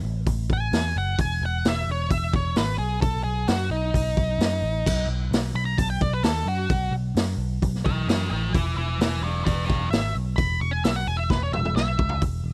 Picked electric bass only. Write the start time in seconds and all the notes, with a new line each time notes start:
0.03 A1
0.26 A1
0.49 A1
0.72 E2
0.96 F#1
1.18 E1
1.42 E1
1.65 E1
1.88 E1
2.10 E1
2.33 E1
2.57 G#1
2.78 B1
3.02 B1
3.25 B1
3.48 F#2
3.70 B1
3.94 B1
4.17 B1
4.38 F#2
4.62 A1
4.87 B1
5.07 B1
5.31 B1
5.54 B1
5.78 B1
6.01 B1
6.23 D#2
6.46 F#2
6.70 B1
6.91 B1
7.15 F#2
7.37 B1
7.62 B1
7.85 B1
8.07 F#2
8.31 A1
8.54 E1
8.77 E1
9.00 E1
9.21 E1
9.46 E1
9.69 E1
9.92 G#1
10.15 B1
10.38 E1
10.61 E1
10.84 B1
11.07 E1
11.30 E1
11.52 E1
11.76 B1
11.99 C#2
12.22 E1
12.44 E1